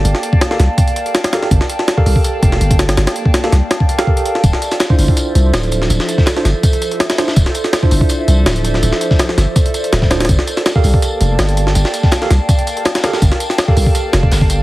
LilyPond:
<<
  \new Staff \with { instrumentName = "Tine electric piano" } { \time 4/4 \key g \dorian \tempo 4 = 164 <g' a' bes' f''>4~ <g' a' bes' f''>16 <g' a' bes' f''>16 r2 <g' a' bes' f''>8 | r4 r16 <g' a' bes' f''>2~ <g' a' bes' f''>8.~ | <g' a' bes' f''>4~ <g' a' bes' f''>16 <g' a' bes' f''>16 r4 r16 <g' a' bes' f''>4~ <g' a' bes' f''>16 | r4 r16 <d' e' f' c''>2~ <d' e' f' c''>8.~ |
<d' e' f' c''>4~ <d' e' f' c''>16 <d' e' f' c''>16 r2 <d' e' f' c''>8 | r4 r16 <d' e' f' c''>2~ <d' e' f' c''>8.~ | <d' e' f' c''>4~ <d' e' f' c''>16 r2 r16 <d' e' f' c''>8 | r4 r16 <g' a' bes' f''>2~ <g' a' bes' f''>8.~ |
<g' a' bes' f''>4~ <g' a' bes' f''>16 <g' a' bes' f''>16 r2 <g' a' bes' f''>8 | r4 r16 <g' a' bes' f''>2~ <g' a' bes' f''>8. | }
  \new Staff \with { instrumentName = "808-style bass" } { \clef bass \time 4/4 \key g \dorian g,,8 r4 c,8 r2 | g,,8 r4 c,8 r8 f,,8 g,,4 | g,,8 r4 c,8 r2 | d,,8 r4 g,,8 r8 c,8 d,,4 |
d,,8 r4 g,,8 r2 | d,,8 r4 g,,8 r8 c,8 d,,4 | d,,8 r4 g,,8 r4 d,,4 | g,,8 r4 c,8 r8 f,,8 g,,4 |
g,,8 r4 c,8 r2 | g,,8 r4 c,8 r8 f,,8 g,,4 | }
  \new DrumStaff \with { instrumentName = "Drums" } \drummode { \time 4/4 hh16 sn16 hh16 bd16 <hh sn>16 sn16 <hh sn>8 <hh bd>16 hh16 hh16 hh16 <hh sn>16 <hh sn>16 <hh sn>16 sn16 | <hh bd>16 sn16 hh16 sn16 <hh sn>16 bd16 hho16 bd16 hh8 <hh bd>16 sn16 hh16 <hh bd>16 <hh sn>16 <hh sn>16 | <hh sn>16 <hh sn>16 hh16 bd16 <hh sn>16 sn16 <hh sn>8 <hh sn>16 bd16 hh16 <hh sn>16 bd16 hh16 hh16 sn16 | <hh bd tamb>16 sn16 <hh tamb>16 <hh sn>16 <hh sn tamb>16 bd16 <hho tamb>16 bd16 <hh tamb>8 <hh tamb>8 <hh sn tamb>16 hh16 <hh tamb>16 sn16 |
<hh tamb>16 sn16 <hh tamb>16 <bd sn>16 <hh sn tamb>16 sn16 <hh sn tamb>8 <hh bd tamb>16 hh16 <hh tamb>16 hh16 <hh sn tamb>16 <hh sn>16 <hh sn tamb>16 <sn tamb>16 | <hh bd tamb>16 sn16 <hh tamb>16 <hh sn>16 <hh sn tamb>16 bd16 <hho tamb>16 bd16 <hh tamb>8 <hh tamb>8 <hh sn tamb>16 hh16 <hh tamb>16 sn16 | <hh tamb>16 sn16 <hh tamb>16 <bd sn>16 <hh sn tamb>16 sn16 <hh sn tamb>8 <hh bd tamb>16 hh16 <hh tamb>16 hh16 <hh sn tamb>16 <bd sn>16 <hh sn tamb>16 <hh sn>32 <hh sn>32 | <hh bd tamb>16 sn16 <hh tamb>16 <hh sn>16 <hh sn tamb>16 bd16 <hho tamb>16 bd16 <hh tamb>8 <hh tamb>8 <hh sn tamb>16 hh16 <hh tamb>16 sn16 |
<hh tamb>16 sn16 <hh tamb>16 <bd sn>16 <hh sn tamb>16 sn16 <hh sn tamb>8 <hh bd tamb>16 hh16 <hh tamb>16 hh16 <hh sn tamb>16 <hh sn>16 <hh sn tamb>16 <sn tamb>16 | <hh bd tamb>16 sn16 <hh tamb>16 <hh sn>16 <hh sn tamb>16 bd16 <hho tamb>16 bd16 <hh tamb>8 <hh sn tamb>16 bd16 <hho sn tamb>16 bd16 <hh tamb>8 | }
>>